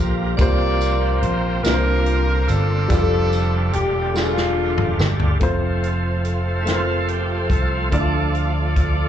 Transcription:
Already playing: fingered electric bass A#1, tonewheel organ G3 A#3 F4 A#4, upright piano A#3 F4 G4 C5, horn section F4 G4
0.37 fingered electric bass C2, upright piano C3 A#3 F4 G4, tonewheel organ F3 A#3 C4 G4, horn section F4 A#4 D5, kick, closed hi-hat, tambourine
0.41 upright piano C5
0.81 closed hi-hat, tambourine
1.21 fingered electric bass A#1, horn section C5, closed hi-hat
1.63 fingered electric bass C2, upright piano C3 A#3 D4 F4, tonewheel organ D3 A#3 C4 E4, horn section D4 F4 A#4, snare, closed hi-hat, tambourine
1.67 tonewheel organ F4, upright piano B4
1.74 upright piano C5
2.06 closed hi-hat
2.48 fingered electric bass G1, horn section C4 D4 A4, closed hi-hat, tambourine
2.88 fingered electric bass F1, tonewheel organ D3 G3 A3 F4, upright piano G3 D4 F4, kick, closed hi-hat, tambourine
2.92 upright piano G4
2.98 upright piano A4
3.32 closed hi-hat, tambourine
3.73 fingered electric bass E1, horn section G4, closed hi-hat
4.14 upright piano G3 D4 F4 G#4, horn section A3 F4, snare, tambourine
4.18 horn section D4
4.24 upright piano A4
4.37 snare
4.78 mid tom
4.99 fingered electric bass G1, snare, tambourine
5.20 floor tom
5.39 fingered electric bass F1, tonewheel organ F3 A3, upright piano A3 C4 F4 C5, string section F4 A4 C5 F5, kick, closed hi-hat
5.44 tonewheel organ C4
5.84 closed hi-hat
6.25 closed hi-hat
6.61 upright piano A3, tonewheel organ E4
6.66 upright piano C4 F4 A#4, tonewheel organ F4, snare, closed hi-hat
6.75 upright piano C5
7.01 tonewheel organ A4
7.08 tonewheel organ G4, closed hi-hat
7.49 fingered electric bass C2, tonewheel organ F3 A3 C4 A4, kick, closed hi-hat
7.90 fingered electric bass D2, upright piano D3 A3 D4 E4 D5, tonewheel organ F3 A3 D4 A4, string section D5, kick, closed hi-hat
8.00 upright piano F4
8.33 tonewheel organ F4, closed hi-hat
8.76 tonewheel organ D4, kick, closed hi-hat

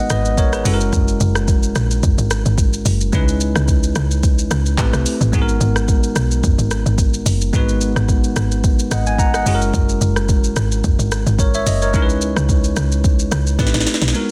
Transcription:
Already playing: tine electric piano G#3 B3 D#4 F#4 B4
0.00 tine electric piano D#5 F#5
0.10 log drum bass G#1, tine electric piano B4 D#5, cross-stick, shaker
0.25 shaker
0.37 tine electric piano A#4 C#5, kick, shaker
0.53 tine electric piano G#4 B4, cross-stick, shaker
0.64 log drum bass F#1, tine electric piano G#3 C#4 E4 F#4 A4, open hi-hat, shaker
0.74 tine electric piano A#4
0.81 shaker
0.93 log drum bass F#1, kick, shaker
1.08 shaker
1.20 log drum bass F#1, shaker
1.35 cross-stick, shaker
1.48 kick, shaker
1.63 shaker
1.75 log drum bass A#1, cross-stick, shaker
1.91 shaker
2.03 log drum bass F#1, kick, shaker
2.18 log drum bass G#1, shaker
2.31 cross-stick, shaker
2.46 log drum bass G#1, shaker
2.58 kick, shaker
2.73 shaker
2.85 log drum bass F#1, open hi-hat, shaker
3.01 shaker
3.12 log drum bass C#2, tine electric piano G#3 C#4 D#4 E4 B4, kick, shaker
3.28 shaker
3.40 shaker
3.56 log drum bass C#2, cross-stick, shaker
3.68 kick, shaker
3.83 shaker
3.96 log drum bass C#2, cross-stick, shaker
4.11 shaker
4.23 kick, shaker
4.39 shaker
4.51 log drum bass C#2, cross-stick, shaker
4.66 shaker
4.78 log drum bass A1, tine electric piano A3 C4 E4 G4 B4, kick, clap, shaker
4.93 log drum bass C2, cross-stick, shaker
5.06 open hi-hat, shaker
5.21 log drum bass A1, shaker
5.32 log drum bass G#1, tine electric piano G#3 B3 D#4 F#4 G#4, kick, shaker
5.42 tine electric piano A#4
5.49 shaker
5.61 log drum bass G#1, shaker
5.76 cross-stick, shaker
5.88 kick, shaker
6.03 shaker
6.16 log drum bass B1, cross-stick, shaker
6.31 shaker
6.44 log drum bass F#1, kick, shaker
6.58 log drum bass G#1, shaker
6.71 cross-stick, shaker
6.86 log drum bass G#1, shaker
6.98 kick, shaker
7.14 shaker
7.26 log drum bass F#1, open hi-hat, shaker
7.41 shaker
7.53 log drum bass G#1, tine electric piano G#3 B3 D#4 F#4 B4, kick, shaker
7.69 shaker
7.81 shaker
7.96 log drum bass G#1, cross-stick, shaker
8.09 kick, shaker
8.24 shaker
8.36 log drum bass G#1, cross-stick, shaker
8.52 shaker
8.64 kick, shaker
8.79 shaker
8.91 log drum bass G#1, tine electric piano D#5 F#5, cross-stick, shaker
9.06 tine electric piano G#5, shaker
9.18 tine electric piano F#5 A#5, kick, shaker
9.34 tine electric piano D#5 F#5, cross-stick, shaker
9.45 log drum bass F#1, tine electric piano G#3 C#4 E4 F#4 G#4, open hi-hat, shaker
9.55 tine electric piano A#4
9.61 shaker
9.74 log drum bass F#1, kick, shaker
9.89 shaker
10.01 log drum bass F#1, shaker
10.16 cross-stick, shaker
10.29 kick, shaker
10.44 shaker
10.56 log drum bass G#1, cross-stick, shaker
10.72 shaker
10.84 log drum bass F#1, kick, shaker
10.99 log drum bass G#1, shaker
11.12 cross-stick, shaker
11.26 log drum bass G#1, shaker
11.39 tine electric piano A#4 C#5, kick, shaker
11.54 tine electric piano C#5 E5, shaker
11.66 log drum bass F#1, tine electric piano D#5, open hi-hat, shaker
11.82 tine electric piano A#4 C#5, shaker
11.93 log drum bass C#2, tine electric piano G#3 C#4 D#4 E4 A#4, kick, shaker
12.02 tine electric piano B4
12.09 shaker
12.21 shaker
12.36 log drum bass C#2, cross-stick, shaker
12.49 kick, shaker
12.64 shaker
12.76 log drum bass C#2, cross-stick, shaker
12.92 shaker
13.04 kick, shaker
13.19 shaker
13.31 log drum bass C#2, cross-stick, shaker
13.47 shaker
13.59 log drum bass A1, tine electric piano A3 C4 E4 G4 B4, kick, snare, shaker
13.67 snare
13.74 log drum bass A1, snare, shaker
13.80 snare
13.87 snare, open hi-hat, shaker
13.94 snare
14.02 log drum bass B1, snare, shaker
14.08 snare
14.13 tine electric piano G#3 B3 D#4 F#4 A#4, shaker

